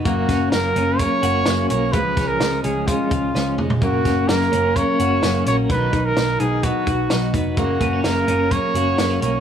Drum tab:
HH |x-x-x-x-x-x-x-x-|x-x-x-x-x-x-----|x-x-x-x-x-x-x-x-|x-x-x-x-x-x-x-x-|
SD |--o-o-------o---|--o-o-------o---|--o-o-------o---|----o-------o---|
T2 |----------------|--------------o-|----------------|----------------|
FT |----------------|---------------o|----------------|----------------|
BD |o-o-----o-------|o-o-----o-o-----|o-o-----o-------|o-o-----o-o---o-|

HH |x-x-x-x-x-x-x-x-|
SD |----o-------o---|
T2 |----------------|
FT |----------------|
BD |o-o-----o-------|